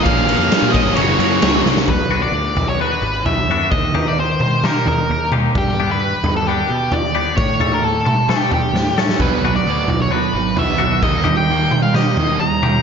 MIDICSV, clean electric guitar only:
0, 0, Header, 1, 3, 480
1, 0, Start_track
1, 0, Tempo, 457317
1, 60, Time_signature, 4, 2, 24, 8
1, 13458, End_track
2, 0, Start_track
2, 0, Title_t, "Clean electric guitar"
2, 0, Program_c, 0, 27
2, 2211, Note_on_c, 0, 66, 82
2, 2215, Note_on_c, 0, 62, 83
2, 2219, Note_on_c, 0, 59, 78
2, 2224, Note_on_c, 0, 54, 74
2, 2443, Note_off_c, 0, 59, 0
2, 2444, Note_off_c, 0, 54, 0
2, 2446, Note_off_c, 0, 62, 0
2, 2453, Note_off_c, 0, 66, 0
2, 2948, Note_on_c, 0, 54, 74
2, 2949, Note_on_c, 0, 59, 81
2, 2951, Note_on_c, 0, 62, 82
2, 2959, Note_on_c, 0, 66, 88
2, 3179, Note_off_c, 0, 66, 0
2, 3180, Note_off_c, 0, 62, 0
2, 3181, Note_off_c, 0, 54, 0
2, 3182, Note_off_c, 0, 59, 0
2, 3682, Note_on_c, 0, 66, 94
2, 3685, Note_on_c, 0, 62, 94
2, 3689, Note_on_c, 0, 59, 89
2, 3691, Note_on_c, 0, 54, 72
2, 3892, Note_off_c, 0, 54, 0
2, 3899, Note_off_c, 0, 59, 0
2, 3902, Note_off_c, 0, 62, 0
2, 3904, Note_off_c, 0, 66, 0
2, 4140, Note_on_c, 0, 67, 84
2, 4143, Note_on_c, 0, 58, 75
2, 4143, Note_on_c, 0, 63, 83
2, 4153, Note_on_c, 0, 51, 61
2, 4375, Note_off_c, 0, 51, 0
2, 4378, Note_off_c, 0, 67, 0
2, 4379, Note_off_c, 0, 58, 0
2, 4379, Note_off_c, 0, 63, 0
2, 4867, Note_on_c, 0, 51, 74
2, 4873, Note_on_c, 0, 58, 78
2, 4880, Note_on_c, 0, 63, 91
2, 4880, Note_on_c, 0, 67, 82
2, 5099, Note_off_c, 0, 67, 0
2, 5102, Note_off_c, 0, 51, 0
2, 5103, Note_off_c, 0, 63, 0
2, 5105, Note_off_c, 0, 58, 0
2, 5588, Note_on_c, 0, 67, 96
2, 5593, Note_on_c, 0, 63, 84
2, 5597, Note_on_c, 0, 58, 79
2, 5605, Note_on_c, 0, 51, 72
2, 5823, Note_off_c, 0, 67, 0
2, 5825, Note_off_c, 0, 63, 0
2, 5827, Note_off_c, 0, 58, 0
2, 5831, Note_off_c, 0, 51, 0
2, 6085, Note_on_c, 0, 62, 87
2, 6085, Note_on_c, 0, 67, 92
2, 6094, Note_on_c, 0, 59, 73
2, 6097, Note_on_c, 0, 55, 66
2, 6311, Note_off_c, 0, 67, 0
2, 6312, Note_off_c, 0, 62, 0
2, 6316, Note_off_c, 0, 59, 0
2, 6317, Note_off_c, 0, 55, 0
2, 6806, Note_on_c, 0, 55, 77
2, 6809, Note_on_c, 0, 59, 83
2, 6819, Note_on_c, 0, 62, 94
2, 6826, Note_on_c, 0, 67, 81
2, 7032, Note_off_c, 0, 55, 0
2, 7034, Note_off_c, 0, 59, 0
2, 7035, Note_off_c, 0, 67, 0
2, 7039, Note_off_c, 0, 62, 0
2, 7503, Note_on_c, 0, 67, 87
2, 7505, Note_on_c, 0, 62, 82
2, 7508, Note_on_c, 0, 59, 83
2, 7512, Note_on_c, 0, 55, 82
2, 7733, Note_off_c, 0, 55, 0
2, 7740, Note_off_c, 0, 59, 0
2, 7741, Note_off_c, 0, 67, 0
2, 7742, Note_off_c, 0, 62, 0
2, 7984, Note_on_c, 0, 69, 92
2, 7987, Note_on_c, 0, 61, 76
2, 7993, Note_on_c, 0, 57, 81
2, 7997, Note_on_c, 0, 52, 69
2, 8221, Note_off_c, 0, 52, 0
2, 8222, Note_off_c, 0, 69, 0
2, 8223, Note_off_c, 0, 61, 0
2, 8226, Note_off_c, 0, 57, 0
2, 8698, Note_on_c, 0, 52, 81
2, 8702, Note_on_c, 0, 57, 81
2, 8707, Note_on_c, 0, 61, 83
2, 8710, Note_on_c, 0, 69, 90
2, 8927, Note_off_c, 0, 69, 0
2, 8933, Note_off_c, 0, 61, 0
2, 8939, Note_off_c, 0, 52, 0
2, 8941, Note_off_c, 0, 57, 0
2, 9425, Note_on_c, 0, 69, 103
2, 9435, Note_on_c, 0, 61, 92
2, 9439, Note_on_c, 0, 57, 83
2, 9441, Note_on_c, 0, 52, 74
2, 9663, Note_off_c, 0, 69, 0
2, 9665, Note_off_c, 0, 52, 0
2, 9668, Note_off_c, 0, 61, 0
2, 9670, Note_off_c, 0, 57, 0
2, 9915, Note_on_c, 0, 66, 84
2, 9917, Note_on_c, 0, 59, 87
2, 9919, Note_on_c, 0, 62, 88
2, 9926, Note_on_c, 0, 54, 70
2, 10129, Note_off_c, 0, 54, 0
2, 10133, Note_off_c, 0, 62, 0
2, 10134, Note_off_c, 0, 59, 0
2, 10136, Note_off_c, 0, 66, 0
2, 10609, Note_on_c, 0, 54, 79
2, 10611, Note_on_c, 0, 59, 88
2, 10620, Note_on_c, 0, 62, 91
2, 10621, Note_on_c, 0, 66, 87
2, 10844, Note_off_c, 0, 66, 0
2, 10847, Note_off_c, 0, 62, 0
2, 10850, Note_off_c, 0, 59, 0
2, 10852, Note_off_c, 0, 54, 0
2, 11319, Note_on_c, 0, 66, 101
2, 11327, Note_on_c, 0, 62, 85
2, 11328, Note_on_c, 0, 59, 82
2, 11333, Note_on_c, 0, 54, 81
2, 11558, Note_off_c, 0, 54, 0
2, 11559, Note_off_c, 0, 59, 0
2, 11560, Note_off_c, 0, 62, 0
2, 11564, Note_off_c, 0, 66, 0
2, 11796, Note_on_c, 0, 67, 96
2, 11804, Note_on_c, 0, 63, 85
2, 11805, Note_on_c, 0, 58, 75
2, 11811, Note_on_c, 0, 51, 66
2, 12038, Note_off_c, 0, 51, 0
2, 12045, Note_off_c, 0, 67, 0
2, 12047, Note_off_c, 0, 58, 0
2, 12048, Note_off_c, 0, 63, 0
2, 12526, Note_on_c, 0, 51, 80
2, 12535, Note_on_c, 0, 58, 81
2, 12537, Note_on_c, 0, 63, 88
2, 12537, Note_on_c, 0, 67, 82
2, 12755, Note_off_c, 0, 67, 0
2, 12761, Note_off_c, 0, 63, 0
2, 12767, Note_off_c, 0, 58, 0
2, 12773, Note_off_c, 0, 51, 0
2, 13254, Note_on_c, 0, 67, 91
2, 13257, Note_on_c, 0, 63, 87
2, 13264, Note_on_c, 0, 51, 76
2, 13267, Note_on_c, 0, 58, 84
2, 13458, Note_off_c, 0, 51, 0
2, 13458, Note_off_c, 0, 58, 0
2, 13458, Note_off_c, 0, 63, 0
2, 13458, Note_off_c, 0, 67, 0
2, 13458, End_track
3, 0, Start_track
3, 0, Title_t, "Muted clean electric guitar strokes"
3, 1976, Note_on_c, 9, 29, 47
3, 2081, Note_off_c, 9, 29, 0
3, 2455, Note_on_c, 9, 29, 42
3, 2560, Note_off_c, 9, 29, 0
3, 2695, Note_on_c, 9, 29, 47
3, 2800, Note_off_c, 9, 29, 0
3, 3191, Note_on_c, 9, 29, 49
3, 3296, Note_off_c, 9, 29, 0
3, 3435, Note_on_c, 9, 29, 42
3, 3540, Note_off_c, 9, 29, 0
3, 3897, Note_on_c, 9, 29, 43
3, 4002, Note_off_c, 9, 29, 0
3, 4388, Note_on_c, 9, 29, 43
3, 4493, Note_off_c, 9, 29, 0
3, 4627, Note_on_c, 9, 29, 51
3, 4732, Note_off_c, 9, 29, 0
3, 5112, Note_on_c, 9, 29, 46
3, 5217, Note_off_c, 9, 29, 0
3, 5360, Note_on_c, 9, 29, 42
3, 5465, Note_off_c, 9, 29, 0
3, 5845, Note_on_c, 9, 29, 50
3, 5950, Note_off_c, 9, 29, 0
3, 6329, Note_on_c, 9, 29, 48
3, 6434, Note_off_c, 9, 29, 0
3, 6571, Note_on_c, 9, 29, 46
3, 6676, Note_off_c, 9, 29, 0
3, 7047, Note_on_c, 9, 29, 51
3, 7152, Note_off_c, 9, 29, 0
3, 7277, Note_on_c, 9, 29, 48
3, 7382, Note_off_c, 9, 29, 0
3, 7737, Note_on_c, 9, 29, 43
3, 7842, Note_off_c, 9, 29, 0
3, 8234, Note_on_c, 9, 29, 45
3, 8339, Note_off_c, 9, 29, 0
3, 8454, Note_on_c, 9, 29, 49
3, 8559, Note_off_c, 9, 29, 0
3, 8940, Note_on_c, 9, 29, 47
3, 9045, Note_off_c, 9, 29, 0
3, 9187, Note_on_c, 9, 29, 43
3, 9291, Note_off_c, 9, 29, 0
3, 9669, Note_on_c, 9, 29, 44
3, 9774, Note_off_c, 9, 29, 0
3, 10142, Note_on_c, 9, 29, 43
3, 10247, Note_off_c, 9, 29, 0
3, 10388, Note_on_c, 9, 29, 49
3, 10493, Note_off_c, 9, 29, 0
3, 10857, Note_on_c, 9, 29, 49
3, 10962, Note_off_c, 9, 29, 0
3, 11086, Note_on_c, 9, 29, 50
3, 11191, Note_off_c, 9, 29, 0
3, 11562, Note_on_c, 9, 29, 45
3, 11667, Note_off_c, 9, 29, 0
3, 12051, Note_on_c, 9, 29, 43
3, 12156, Note_off_c, 9, 29, 0
3, 12293, Note_on_c, 9, 29, 46
3, 12398, Note_off_c, 9, 29, 0
3, 12768, Note_on_c, 9, 29, 49
3, 12873, Note_off_c, 9, 29, 0
3, 13011, Note_on_c, 9, 29, 45
3, 13116, Note_off_c, 9, 29, 0
3, 13458, End_track
0, 0, End_of_file